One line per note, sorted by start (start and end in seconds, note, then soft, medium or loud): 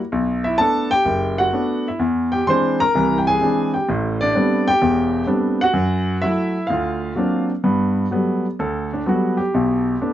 0.12 0.53 B1 medium
0.44 0.58 E4 medium
0.44 0.58 E5 medium
0.58 0.92 A3 medium
0.58 0.92 B3 soft
0.58 0.93 D4 medium
0.58 0.90 A4 medium
0.58 0.91 A5 loud
0.91 1.35 G4 medium
0.91 1.39 G5 loud
1.05 1.46 F#1 medium
1.38 1.82 F#4 medium
1.38 1.86 F#5 medium
1.53 1.86 A3 medium
1.53 1.86 B3 soft
1.53 1.86 D4 medium
1.88 2.01 E4 medium
1.88 2.00 E5 medium
1.99 2.40 E2 medium
2.32 2.46 G4 medium
2.32 2.46 G5 medium
2.47 2.80 E3 medium
2.47 2.80 G#3 medium
2.47 2.81 C4 medium
2.47 2.81 D4 medium
2.47 2.78 C5 medium
2.47 2.77 C6 loud
2.80 3.15 A#4 medium
2.80 3.18 A#5 loud
2.95 3.35 C2 medium
2.95 3.35 E3 medium
3.18 3.26 G5 medium
3.27 3.71 G#4 medium
3.27 3.70 G#5 loud
3.41 3.74 E3 medium
3.41 3.74 G#3 soft
3.41 3.75 C4 medium
3.41 3.75 D4 medium
3.74 3.88 G4 medium
3.74 3.87 G5 medium
3.89 4.29 A1 medium
3.89 4.29 A2 medium
4.21 4.34 D4 medium
4.21 4.69 D5 loud
4.35 4.68 G3 medium
4.35 4.69 A3 medium
4.35 4.69 B3 medium
4.35 4.69 C4 medium
4.35 4.69 D4 medium
4.68 5.27 G4 medium
4.68 5.25 G5 loud
4.81 5.22 E1 medium
4.81 5.22 E2 medium
5.26 5.61 G3 medium
5.26 5.61 A3 medium
5.26 5.61 B3 soft
5.26 5.61 C4 soft
5.26 5.61 D4 medium
5.61 6.20 F#4 medium
5.61 6.25 F#5 loud
5.74 6.15 F#2 medium
6.22 6.56 F#3 medium
6.22 6.57 A3 soft
6.22 6.25 E4 medium
6.22 6.66 E5 medium
6.27 6.69 E4 medium
6.67 7.11 D2 medium
6.67 7.43 F5 medium
6.73 7.46 F4 medium
7.15 7.50 F#3 medium
7.15 7.50 A#3 soft
7.15 7.50 C4 medium
7.15 7.50 D4 medium
7.64 8.05 G2 medium
7.64 8.05 B3 medium
8.11 8.44 F#3 medium
8.11 8.45 G3 soft
8.11 8.45 A3 soft
8.11 8.45 B3 medium
8.59 9.00 D2 medium
8.59 8.90 A4 medium
8.93 9.06 D4 medium
9.06 9.39 F#3 medium
9.06 9.39 G3 soft
9.06 9.40 A3 soft
9.06 9.39 B3 medium
9.06 9.38 F#4 medium
9.37 10.13 G4 medium
9.54 9.94 B1 medium
9.54 9.95 B2 medium
10.01 10.13 A3 medium
10.01 10.13 B3 soft
10.01 10.13 D4 medium